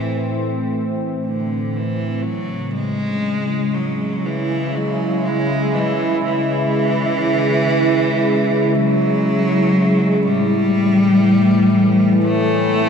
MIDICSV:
0, 0, Header, 1, 3, 480
1, 0, Start_track
1, 0, Tempo, 1000000
1, 1080, Time_signature, 4, 2, 24, 8
1, 6188, End_track
2, 0, Start_track
2, 0, Title_t, "Analog synth pad"
2, 0, Program_c, 0, 89
2, 0, Note_on_c, 0, 45, 64
2, 0, Note_on_c, 0, 52, 75
2, 0, Note_on_c, 0, 57, 79
2, 0, Note_on_c, 0, 60, 70
2, 1077, Note_off_c, 0, 45, 0
2, 1077, Note_off_c, 0, 60, 0
2, 1077, Note_on_c, 0, 49, 76
2, 1079, Note_off_c, 0, 52, 0
2, 1079, Note_off_c, 0, 57, 0
2, 1228, Note_on_c, 0, 56, 68
2, 1315, Note_on_c, 0, 64, 59
2, 4907, Note_on_c, 0, 45, 74
2, 4918, Note_off_c, 0, 49, 0
2, 4919, Note_off_c, 0, 56, 0
2, 5128, Note_on_c, 0, 52, 68
2, 5212, Note_on_c, 0, 57, 66
2, 6110, Note_on_c, 0, 60, 75
2, 6156, Note_off_c, 0, 64, 0
2, 6188, Note_off_c, 0, 45, 0
2, 6188, Note_off_c, 0, 52, 0
2, 6188, Note_off_c, 0, 57, 0
2, 6188, Note_off_c, 0, 60, 0
2, 6188, End_track
3, 0, Start_track
3, 0, Title_t, "Cello"
3, 0, Program_c, 1, 42
3, 0, Note_on_c, 1, 52, 81
3, 347, Note_off_c, 1, 52, 0
3, 604, Note_on_c, 1, 50, 62
3, 845, Note_on_c, 1, 52, 70
3, 852, Note_off_c, 1, 50, 0
3, 1067, Note_on_c, 1, 54, 80
3, 1074, Note_off_c, 1, 52, 0
3, 1311, Note_off_c, 1, 54, 0
3, 1314, Note_on_c, 1, 56, 92
3, 1795, Note_on_c, 1, 54, 73
3, 1802, Note_off_c, 1, 56, 0
3, 2044, Note_on_c, 1, 52, 78
3, 2051, Note_off_c, 1, 54, 0
3, 2283, Note_on_c, 1, 54, 77
3, 2290, Note_off_c, 1, 52, 0
3, 2522, Note_on_c, 1, 56, 82
3, 2529, Note_off_c, 1, 54, 0
3, 2758, Note_on_c, 1, 52, 75
3, 2765, Note_off_c, 1, 56, 0
3, 2995, Note_off_c, 1, 52, 0
3, 2998, Note_on_c, 1, 52, 86
3, 4199, Note_on_c, 1, 54, 88
3, 4206, Note_off_c, 1, 52, 0
3, 4919, Note_off_c, 1, 54, 0
3, 4924, Note_on_c, 1, 55, 94
3, 5878, Note_on_c, 1, 57, 98
3, 5885, Note_off_c, 1, 55, 0
3, 6188, Note_off_c, 1, 57, 0
3, 6188, End_track
0, 0, End_of_file